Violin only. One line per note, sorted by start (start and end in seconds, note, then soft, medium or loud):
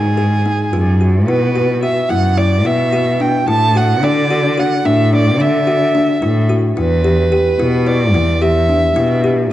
0.00 0.99 G#4 medium
1.27 1.78 B4 medium
1.83 2.11 E5 medium
2.09 2.39 F#5 medium
2.38 2.67 D5 medium
2.66 3.23 E5 medium
3.21 3.48 G5 medium
3.48 3.78 A5 medium
3.77 4.05 F#5 medium
4.04 4.61 D5 medium
4.59 4.87 F#5 medium
4.86 5.13 E5 medium
5.15 5.43 D5 medium
5.41 6.50 E5 medium
6.79 7.89 B4 medium
7.88 8.43 D5 medium
8.41 9.24 E5 medium